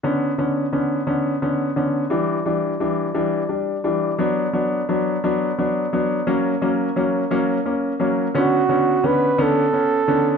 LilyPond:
<<
  \new Staff \with { instrumentName = "Flugelhorn" } { \time 6/8 \key b \minor \tempo 4. = 58 r2. | r2. | r2. | r2. |
fis'4 b'8 a'4. | }
  \new Staff \with { instrumentName = "Grand piano" } { \time 6/8 \key b \minor <d b cis'>8 <d b cis'>8 <d b cis'>8 <d b cis'>8 <d b cis'>8 <d b cis'>8 | <e g d'>8 <e g d'>8 <e g d'>8 <e g d'>8 <g d'>8 <e g d'>8 | <fis b d'>8 <fis b d'>8 <fis b d'>8 <fis b d'>8 <fis b d'>8 <fis b d'>8 | <fis ais cis'>8 <fis ais cis'>8 <fis ais cis'>8 <fis ais cis'>8 <ais cis'>8 <fis ais cis'>8 |
<d b cis'>8 <d b cis'>8 <d b cis'>8 <d b cis'>8 <b cis'>8 <d b cis'>8 | }
>>